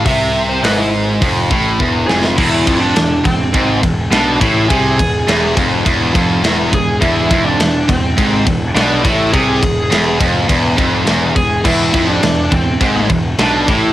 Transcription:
<<
  \new Staff \with { instrumentName = "Lead electric guitar" } { \time 4/4 \tempo 4 = 104 e''8. c''16 b'16 e'16 r2 gis'8 | e'8. d'8. c'4 r8 d'8 e'8 | gis'4. r2 gis'8 | e'8. d'8. c'4 r8 d'8 e'8 |
gis'4. r2 gis'8 | e'8. d'8. c'4 r8 d'8 e'8 | }
  \new Staff \with { instrumentName = "Distorted electric guitar" } { \clef bass \time 4/4 c4 gis,4 f,8 a,8 e,8 f,8 | e,8 f,8 e,8 e,8 gis,8 e,8 b,8 a,8 | c8 e,8 e,8 f,8 e,8 f,8 e,8 e,8 | e,8 f,8 e,8 e,8 gis,8 e,8 b,8 a,8 |
c8 e,8 e,8 f,8 e,8 f,8 e,8 e,8 | e,8 f,8 e,8 e,8 gis,8 e,8 b,8 a,8 | }
  \new Staff \with { instrumentName = "Distorted electric guitar" } { \clef bass \time 4/4 c4 gis,4 f,8 a,8 e,8 f,8 | e,8 f,8 e,8 e,8 gis,8 e,8 b,8 a,8 | c8 e,8 e,8 f,8 e,8 f,8 e,8 e,8 | e,8 f,8 e,8 e,8 gis,8 e,8 b,8 a,8 |
c8 e,8 e,8 f,8 e,8 f,8 e,8 e,8 | e,8 f,8 e,8 e,8 gis,8 e,8 b,8 a,8 | }
  \new Staff \with { instrumentName = "Overdriven electric guitar" } { \clef bass \time 4/4 c4 gis,4 f,8 a,8 e,8 f,8 | e,8 f,8 e,8 e,8 gis,8 e,8 b,8 a,8 | c8 e,8 e,8 f,8 e,8 f,8 e,8 e,8 | e,8 f,8 e,8 e,8 gis,8 e,8 b,8 a,8 |
c8 e,8 e,8 f,8 e,8 f,8 e,8 e,8 | e,8 f,8 e,8 e,8 gis,8 e,8 b,8 a,8 | }
  \new Staff \with { instrumentName = "Picked electric bass" } { \clef bass \time 4/4 c,4 gis,,4 f,,8 a,,8 e,,8 f,,8 | e,,8 f,,8 e,,8 e,,8 gis,,8 e,,8 b,,8 a,,8 | c,8 e,,8 e,,8 f,,8 e,,8 f,,8 e,,8 e,,8 | e,,8 f,,8 e,,8 e,,8 gis,,8 e,,8 b,,8 a,,8 |
c,8 e,,8 e,,8 f,,8 e,,8 f,,8 e,,8 e,,8 | e,,8 f,,8 e,,8 e,,8 gis,,8 e,,8 b,,8 a,,8 | }
  \new DrumStaff \with { instrumentName = "Drums" } \drummode { \time 4/4 <hho bd>4 <hho sn>4 <hho bd>8 bd8 bd8 sn16 sn16 | <cymc bd>8 <bd cymr>8 <cymr sn>8 <bd cymr>8 <bd cymr>8 <bd cymr>8 <cymr sn>8 <bd cymr>8 | <bd cymr>8 <bd cymr>8 <cymr sn>8 <bd cymr>8 <bd cymr>8 <bd cymr>8 <cymr sn>8 <bd cymr>8 | <bd cymr>8 <bd cymr>8 <cymr sn>8 <bd cymr>8 <bd cymr>8 <bd cymr>8 <cymr sn>8 <bd cymr>8 |
<bd cymr>8 <bd cymr>8 <cymr sn>8 <bd cymr>8 <bd cymr>8 <bd cymr>8 <cymr sn>8 <bd cymr>8 | <cymc bd>8 <bd cymr>8 <cymr sn>8 <bd cymr>8 <bd cymr>8 <bd cymr>8 <cymr sn>8 <bd cymr>8 | }
>>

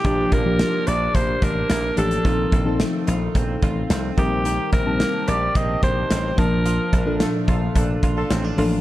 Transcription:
<<
  \new Staff \with { instrumentName = "Alto saxophone" } { \time 4/4 \key g \minor \tempo 4 = 109 g'8 bes'4 d''8 c''8 bes'4 a'8~ | a'4 r2 r8 g'8~ | g'8 bes'4 d''8 ees''8 c''4 bes'8~ | bes'4 r2. | }
  \new Staff \with { instrumentName = "Horn section" } { \time 4/4 \key g \minor r1 | r1 | r1 | r4 <d' f' a'>16 r16 <d' f' a'>16 r16 <d' f' a'>16 r8 <d' f' a'>8 r8. | }
  \new Staff \with { instrumentName = "FM electric piano" } { \time 4/4 \key g \minor <f bes d' g'>8 r16 <f bes d' g'>4. r4 r16 <f bes d' g'>8 | <f c' ees' a'>8 r16 <f c' ees' a'>4. r4 r16 <g c' ees' bes'>8~ | <g c' ees' bes'>8 r16 <g c' ees' a''>4. r4 r16 <f bes d' a''>8~ | <f bes d' a''>8 r16 <bes, f d' a'>4. r4 r16 <f bes d' a'>8 | }
  \new Staff \with { instrumentName = "Clean electric guitar" } { \time 4/4 \key g \minor <f d'>8 bes8 f8 d'8 bes8 d'8 bes8 d'8 | <ees f'>8 c'8 a8 f'8 c'8 f'8 c'8 ees8 | <ees g'>8 c'8 bes8 g'8 c'8 g'8 c'8 f8 | <f f'>8 d'8 a8 f'8 d'8 f'8 c'16 d'16 f'8 | }
  \new Staff \with { instrumentName = "Slap bass" } { \clef bass \time 4/4 \key g \minor bes,,8 bes,,8. r16 bes,,8 bes,,8 a,,8 bes,,8 a,,8 | bes,,8 bes,,8. r16 bes,,8 bes,,8 a,,8 c,8 bes,,8~ | bes,,8 bes,,8. r16 bes,,8 bes,,8 bes,,8 a,,8 bes,,8~ | bes,,8 bes,,8. r16 bes,,8 bes,,8 bes,,8 a,,8 a,,8 | }
  \new DrumStaff \with { instrumentName = "Drums" } \drummode { \time 4/4 <hh bd>8 <hh bd>8 <hh sn>8 hh8 <hh bd>8 <hh bd>8 <hh sn>8 hh16 hh16 | <hh bd>8 <hh bd>8 <hh sn>8 hh8 <hh bd>8 <hh bd>8 <hh sn>8 <hh bd>8 | hh8 <hh bd>8 <hh sn>8 hh8 <hh bd>8 <hh bd>8 <hh sn>8 <hh bd>8 | hh8 <hh bd>8 <hh sn>8 <hh bd>8 <hh bd>8 <hh bd>8 <hh sn>8 hho8 | }
>>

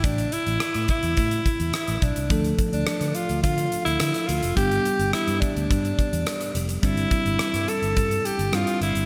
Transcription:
<<
  \new Staff \with { instrumentName = "Alto saxophone" } { \time 4/4 \key g \mixolydian \tempo 4 = 106 d'8 e'4 e'4. e'8 d'8~ | d'16 r8 d'8. f'8 f'8. e'8. f'8 | g'4 e'8 d'2 r8 | e'4. a'4 g'8 f'8 e'8 | }
  \new Staff \with { instrumentName = "Tine electric piano" } { \time 4/4 \key g \mixolydian r1 | <f a d' a'>1 | <g b d' g'>1 | <g c' d' e'>2. <g c' d' e'>4 | }
  \new Staff \with { instrumentName = "Fingered electric bass" } { \clef bass \time 4/4 \key g \mixolydian a,,8 r16 a,,16 r16 a,16 r16 e,16 a,8 r16 e,16 r16 a,,16 b,,16 c,16 | d,8 r16 d,16 r16 d16 r16 d,16 d8 r16 d,16 d16 r16 d,16 f,,16 | g,,8 r16 g,,16 r16 g,16 r16 d,16 g,8 r16 e,16 r8 f,,8 | g,,8 r16 g,,16 r16 g,16 r16 g,,16 g,8 r16 g,,16 g,16 r16 g,,16 g,,16 | }
  \new DrumStaff \with { instrumentName = "Drums" } \drummode { \time 4/4 <hh bd>16 hh16 hh16 hh16 <hh ss>16 hh16 <hh bd>16 hh16 <hh bd>16 hh16 <hh bd>16 hh16 <hh ss>16 hh16 <hh bd>16 hh16 | <hh bd>16 hh16 <hh bd>16 hh16 <hh ss>16 hh16 hh16 hh16 <hh bd>16 hh16 hh16 hh16 <hh ss>16 hh16 hh16 hh16 | <hh bd>16 hh16 hh16 hh16 <hh ss>16 hh16 <hh bd>16 hh16 <hh bd>16 hh16 <hh bd>16 hh16 <hh ss>16 hh16 hh16 hh16 | <hh bd>16 hh16 <hh bd>16 hh16 <hh ss>16 hh16 hh16 hh16 <hh bd>16 hh16 hh16 hh16 <hh ss>16 hh16 hh16 hh16 | }
>>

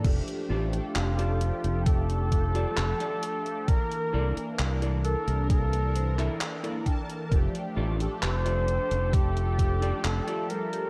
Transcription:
<<
  \new Staff \with { instrumentName = "Clean electric guitar" } { \time 4/4 \key f \major \tempo 4 = 66 r8 <f' g' a' d''>16 r8 <f' g' a' d''>16 r4 r16 <f' g' a' d''>16 r16 <f' g' a' d''>16 r8 | r8 <e' a' bes' d''>16 r8 <e' a' bes' d''>16 r4 c''16 <e' a' bes' d'' e''>16 r16 <e' a' bes' d'' f''>16 g''8 | r8 <f' g' a' d''>16 r8 <f' g' a' d''>16 r4 r16 <f' g' a' d''>16 r16 <f' g' a' d''>16 r8 | }
  \new Staff \with { instrumentName = "Flugelhorn" } { \time 4/4 \key f \major r4 f'4 a'2 | bes'4 r8 a'8 a'4 r4 | r4 c''4 g'4 a'8 bes'8 | }
  \new Staff \with { instrumentName = "Analog polysynth" } { \time 4/4 \key f \major <f a d' g'>8. <f a d' a'>2~ <f a d' a'>8. <f a d' g'>8 | <e bes d' bes'>8. <e bes d'>2~ <e bes d'>8. <e bes d' a''>8 | <f a d' g'>8. <f a d' a'>2~ <f a d' a'>8. <f g d' g'>8 | }
  \new Staff \with { instrumentName = "Fingered electric bass" } { \clef bass \time 4/4 \key f \major f,,16 r16 a,,16 r16 f,,8 r16 f,,4 r16 f,,16 r8. | r8 c,16 r16 c,8 r16 c,4 r4 r16 | f,,16 r16 a,,16 r16 f,,8 r16 f,,4 r16 f,,16 r8. | }
  \new DrumStaff \with { instrumentName = "Drums" } \drummode { \time 4/4 <cymc hh bd>16 hh8 hh16 <hc hh>16 hh16 hh16 hh16 <hh bd>16 hh16 <hh bd>16 hh16 <hc hh>16 hh16 hh16 hh16 | <hh bd>16 hh8 hh16 <hc hh>16 hh16 hh16 hh16 <hh bd>16 hh16 hh16 <hc hh>16 <hc hh>16 hh16 <hh bd>16 hh16 | <hh bd>16 hh8 hh16 <hc hh>16 hh16 hh16 hh16 <hh bd>16 hh16 <hh bd>16 hh16 <hc hh>16 hh16 hh16 hh16 | }
>>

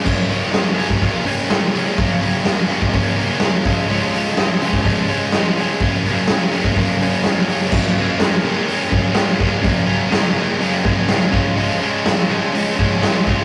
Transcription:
<<
  \new Staff \with { instrumentName = "Overdriven electric guitar" } { \clef bass \time 4/4 \key fis \major \tempo 4 = 125 <fis, cis fis ais cis'>8 <fis, cis fis ais cis'>8 <fis, cis fis ais cis'>8 <fis, cis fis ais cis'>8 <fis, cis fis ais cis'>8 <fis, cis fis ais cis'>8 <fis, cis fis ais cis'>8 <fis, cis fis ais cis'>8 | <fis, cis fis ais cis'>8 <fis, cis fis ais cis'>8 <fis, cis fis ais cis'>8 <fis, cis fis ais cis'>8 <fis, cis fis ais cis'>8 <fis, cis fis ais cis'>8 <fis, cis fis ais cis'>8 <cis eis gis cis'>8 | <cis eis gis cis'>8 <cis eis gis cis'>8 <cis eis gis cis'>8 <cis eis gis cis'>8 <cis eis gis cis'>8 <cis eis gis cis'>8 <cis eis gis cis'>8 <cis eis gis cis'>8 | <fis, cis fis ais cis'>8 <fis, cis fis ais cis'>8 <fis, cis fis ais cis'>8 <fis, cis fis ais cis'>8 <fis, cis fis ais cis'>8 <fis, cis fis ais cis'>8 <fis, cis fis ais cis'>8 <fis, cis fis ais cis'>8 |
<fis, cis fis ais cis'>8 <fis, cis fis ais cis'>8 <fis, cis fis ais cis'>8 <fis, cis fis ais cis'>8 <fis, cis fis ais cis'>8 <fis, cis fis ais cis'>8 <fis, cis fis ais cis'>8 <fis, cis fis ais cis'>8 | <fis, cis fis ais cis'>8 <fis, cis fis ais cis'>8 <fis, cis fis ais cis'>8 <fis, cis fis ais cis'>8 <fis, cis fis ais cis'>8 <fis, cis fis ais cis'>8 <fis, cis fis ais cis'>8 <cis eis gis cis'>8 | <cis eis gis cis'>8 <cis eis gis cis'>8 <cis eis gis cis'>8 <cis eis gis cis'>8 <cis eis gis cis'>8 <cis eis gis cis'>8 <cis eis gis cis'>8 <cis eis gis cis'>8 | }
  \new DrumStaff \with { instrumentName = "Drums" } \drummode { \time 4/4 <cymc bd>8 hho16 sn16 <hho sn>8 hho16 bd16 <hho bd>8 hho8 <hho sn>8 hho8 | <hho bd>8 hho16 sn16 <hho sn>8 hho16 bd16 <hho bd>8 hho8 <hho sn>8 <hho bd>8 | hho8 hho16 sn16 <hho sn>8 hho16 <bd sn>16 <hho bd>8 hho8 <hho sn>8 hho8 | <hho bd>8 hho8 <hho sn>8 hho16 <bd sn>16 <hho bd>8 hho8 <hho sn>8 hho8 |
<cymc bd>4 <hho sn>4 hho8 bd8 <hho sn>8 bd8 | <hho bd>4 <hho sn>4 hho8 bd8 <hho sn>8 bd8 | hho4 <hho sn>4 hho8 bd8 <hho sn>8 bd8 | }
>>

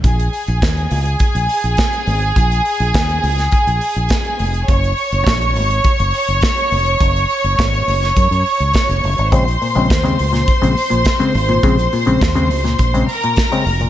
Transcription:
<<
  \new Staff \with { instrumentName = "String section" } { \time 4/4 \key bes \minor \tempo 4 = 104 <aes' aes''>1~ | <aes' aes''>1 | <des'' des'''>1~ | <des'' des'''>1 |
<c'' c'''>1~ | <c'' c'''>2~ <c'' c'''>8 <bes' bes''>4. | }
  \new Staff \with { instrumentName = "Clav" } { \clef bass \time 4/4 \key bes \minor r1 | r1 | r1 | r1 |
<des aes c'>16 r16 bes,16 <des aes c'>16 r16 <des aes c'>16 r16 bes,16 r16 <des aes c'>16 r16 bes,16 r16 <des aes c'>16 r16 bes,16 | <des aes c'>16 r16 bes,16 <des aes c'>16 r16 <des aes c'>16 r16 bes,16 r16 <des aes c'>16 r16 bes,16 r16 <des aes c'>16 r16 bes,16 | }
  \new Staff \with { instrumentName = "Fingered electric bass" } { \clef bass \time 4/4 \key bes \minor bes,,8 r16 bes,,16 ees,8 des,8 r16 bes,,16 r16 bes,,16 r8 aes,,8 | bes,,8 r16 bes,,16 ees,8 des,8 r16 bes,,16 r16 bes,,16 r8 f,,8 | ges,,8 r16 ges,,16 bes,,8 aes,,8 r16 ges,,16 r16 ges,,16 r8 f,,8 | ges,,8 r16 ges,,16 aes,,8 ges,,8 ges,16 ges,16 r16 des,16 r16 f,,16 ges,,16 aes,,16 |
bes,,8 r16 bes,,16 ees,8 des,8 r16 bes,,16 r16 bes,,16 r8 aes,,8 | bes,,8 r16 bes,,16 ees,8 des,8 bes,,8 r4 f,,8 | }
  \new DrumStaff \with { instrumentName = "Drums" } \drummode { \time 4/4 <hh bd>16 hh16 hho16 hh16 <hh bd sn>16 hh16 hho16 hh16 <hh bd>16 hh16 hho16 hh16 <hh bd sn>16 hh16 hho16 hh16 | <hh bd>16 hh16 hho16 hh16 <hh bd sn>16 hh16 hho16 <hh sn>16 <hh bd>16 hh16 hho16 hh16 <hh bd sn>16 hh16 hho16 hh16 | <hh bd>16 hh16 hho16 hh16 <hh bd sn>16 hh16 hho16 hh16 <hh bd>16 hh16 hho16 hh16 <hh bd sn>16 hh16 hho16 hh16 | <hh bd>16 hh16 hho16 hh16 <hh bd sn>16 hh16 hho16 <hh sn>16 <hh bd>16 hh16 hho16 hh16 <hh bd sn>16 hh16 hho16 hh16 |
<hh bd>16 hh16 hho16 hh16 <hh bd sn>16 hh16 hho16 <hh sn>16 <hh bd>16 hh16 hho16 hh16 <hh bd sn>16 hh16 hho16 hh16 | <hh bd>16 hh16 hho16 hh16 <hh bd sn>16 hh16 hho16 <hh sn>16 <hh bd>16 hh16 hho16 hh16 <hh bd sn>16 hh16 hho16 hh16 | }
>>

